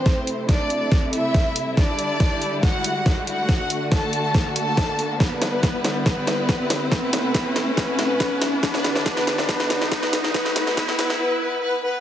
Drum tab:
HH |--x-x-x---x---x-|--x-x-x---x---x-|--x-x-x---x---x-|--x-x-x---x---o-|
SD |o---o---o---o---|o---o---o---o---|o---o---o---o---|o-o-o-o-o-o-o-o-|
BD |o---o---o---o---|o---o---o---o---|o---o---o---o---|o---o---o---o---|

HH |--x-x-x---x---o-|--x-x-x---x---o-|--x-x-o---------|
SD |o-o-o-o-o-o-o-o-|oooooooooooooooo|oooooooo--------|
BD |o---o---o---o---|o---o---o---o---|o---o-----------|